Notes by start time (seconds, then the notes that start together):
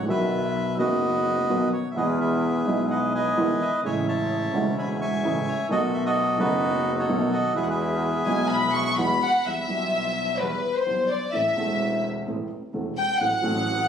0.03 A#1 D#3
0.07 B1 B2 F#3 B3 F#4 B4 E5
0.77 F#1 F#2 D#3 F#3 B3 F#4 B4 D#5
0.81 F#4
1.49 B1 B2 D#3 F#3 B3 F#4
1.73 C#5
1.91 B2 E5
1.95 E2 E3 G#3 B3 E4 G#4 B4 D#5
2.21 G#4 B4 E5
2.65 B1 B2 G#3 B3 D#4
2.69 E4
2.91 B4 D#5 F#5
3.15 B4 D#5 G#5
3.37 E2 D#3 E3 G#3 B3 E4
3.61 E5
3.83 A1 A2 C#3 G#3 A3 E4 C#5 E5 G#5
4.08 C#5 E5 A5
4.52 E1 E2 C#3 G#3 A3 E4
4.78 E5 G#5 B5
5.01 E5 G#5 C#6
5.23 A1 A2 C#3 G#3 A3 E4
5.48 C#5
5.68 B1 B2 D#3 A3 B3 F#4 A4 D#5
5.94 E5
6.05 F#4 A4 D#5
6.38 F#1 F#2 D#3 A3 B3 D#4 F#4 B4
6.99 F#4 A4 C#5
7.09 B1 B2 D#3 A3 B3 F#4
7.33 D#5
7.53 E2 E3 G#3 B3 G#4 B4 E5
7.58 F#4
7.62 F#5
7.70 G#4 B4 E5
8.25 B1 B2 E3 G#3 B3 F#4 G#5
8.50 B5
8.75 C#6
8.86 C#6
8.98 E2 E3 G#3 B3 F#4 B5
9.23 F#5
9.46 E2 E3 G3 B3 G4 E5
9.67 B1 B2 E3 G3 B3
9.71 G4
10.39 E2 E3 G3 B3 G4 B4
10.76 C5
10.86 B1 B2 E3 G3 B3 G4
11.11 D5
11.33 A1 A2 E3 A3 C4 A4 E5
11.55 E1 E2 E3 A3 C4 A4
12.27 A1 A2 E3 A3 C4 A4
12.73 E1 E2 E3 A3 C4 A4
12.97 G5
13.19 A1 A2 F#3 A3 C4 A4 F#5
13.41 A1 A2 F#3 A3 C4 A4